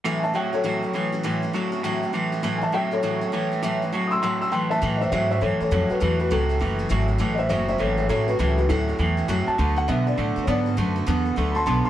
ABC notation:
X:1
M:4/4
L:1/8
Q:"Swing" 1/4=202
K:A
V:1 name="Upright piano"
z [ega] [e=g] [Ac]4- [Ac]- | [Ac] z6 z | z [ega] [e=g] [Ac]4- [Ac]- | [Ac] z2 [=c'^d'e'] [c'e'] [c'e'] [=gc'] [ea] |
z [=c^de] [ce] [ce] [A^c] [Ac] [Ac] [FB] | [FB] [FB] A4 z2 | z [=c^de] [ce] [ce] [A^c] [Ac] [Ac] [FB] | [FB] [FB] [EA]4 z a- |
a f e d3 [cd] z | z4 z [ab=c'] [ac'] [ac'] |]
V:2 name="Steel-string acoustic guitar"
[A,,E,F,A,CF] [F,A,CF] [F,A,CF] [F,A,CF] [A,,E,F,A,CF] [F,A,CF] [F,A,CF] [F,A,CF] | [A,,E,F,A,CF] [F,A,CF] [F,A,CF] [F,A,CF] [A,,E,F,A,CF] [F,A,CF] [F,A,CF] [F,A,CF] | [A,,E,F,A,CF] [F,A,CF] [F,A,CF] [F,A,CF] [A,,E,F,A,CF] [F,A,CF] [F,A,CF] [F,A,CF] | [A,,E,F,A,CF] [F,A,CF] [F,A,CF] [F,A,CF] [A,,E,F,A,CF] [F,A,CF] [F,A,CF] [F,A,CF] |
[A,,E,F,A,CF] [F,A,CF] [A,,E,F,A,CF] [F,A,CF] [F,A,CF] [F,A,CF] [A,,E,F,A,CF] [F,A,CF] | [A,,E,F,A,CF] [F,A,CF] [A,,E,F,A,CF] [F,A,CF] [F,A,CF] [F,A,CF] [A,,E,F,A,CF] [F,A,CF] | [A,,E,F,A,CF] [F,A,CF] [A,,E,F,A,CF] [F,A,CF] [F,A,CF] [F,A,CF] [A,,E,F,A,CF] [F,A,CF] | [A,,E,F,A,CF] [F,A,CF] [A,,E,F,A,CF] [F,A,CF] [F,A,CF] [F,A,CF] [A,,E,F,A,CF] [F,A,CF] |
[D,F,B,FA] [FA] [D,F,B,FA] [B,FA] [F,B,FA] [B,FA] [D,F,B,FA] [B,FA] | [D,F,B,FA] [B,FA] [D,F,B,FA] [B,FA] [F,B,FA] [B,FA] [D,F,B,FA] [FA] |]
V:3 name="Clean electric guitar" clef=bass
[A,,E,]2 [A,,F,]2 [A,,F,]2 [A,,E,]2 | [A,,E,]2 [A,,F,]2 [A,,F,]2 [A,,E,]2 | [A,,E,]2 [A,,F,]2 [A,,F,]2 [A,,E,]2 | [A,,E,]2 [A,,F,]2 [A,,F,]2 [A,,E,]2 |
[A,,E,]2 [A,,F,]2 [A,,E,]2 [A,,F,]2 | [A,,E,]2 [A,,F,]2 [A,,E,]2 [A,,F,]2 | [A,,E,]2 [A,,F,]2 [A,,E,]2 [A,,F,]2 | [A,,E,]2 [A,,F,]2 [A,,E,]2 [A,,F,]2 |
[D,A,]2 [D,B,]2 [D,A,]2 [D,B,]2 | [D,A,]2 [D,B,]2 [D,A,]2 [D,B,]2 |]
V:4 name="Upright bass" clef=bass
z8 | z8 | z8 | z8 |
A,,2 G,,2 F,, z =F,, z | E,,2 C,,2 F,,,2 G,,,2 | A,,,2 F,,,2 G,,,2 A,,,2 | C,,2 D,,2 E,,2 F,, z |
D,,2 B,,2 A,, z G,,2 | F,,2 E,,2 D,,2 B,,, z |]